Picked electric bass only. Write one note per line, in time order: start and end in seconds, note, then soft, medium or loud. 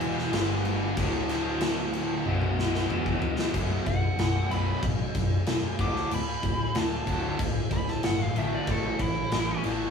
0.00 0.29 E1 loud
0.33 0.93 G1 loud
0.97 2.22 D1 medium
2.25 2.86 B0 loud
2.90 3.50 E1 medium
3.54 3.74 B0 medium
3.87 4.06 B0 medium
4.17 4.38 B0 medium
4.51 4.70 B0 medium
4.83 5.03 A1 medium
5.15 5.35 B0 medium
5.46 5.66 E1 medium
5.79 5.99 D1 medium
6.11 6.31 D1 medium
6.43 6.63 D1 medium
6.75 6.95 D1 medium
7.07 7.27 D1 medium
7.39 7.59 C1 medium
7.71 7.91 D1 medium
8.04 8.24 G1 medium
8.36 8.55 A1 medium
8.67 8.87 A1 medium
8.99 9.19 A1 medium
9.32 9.52 A1 medium
9.64 9.84 A1 medium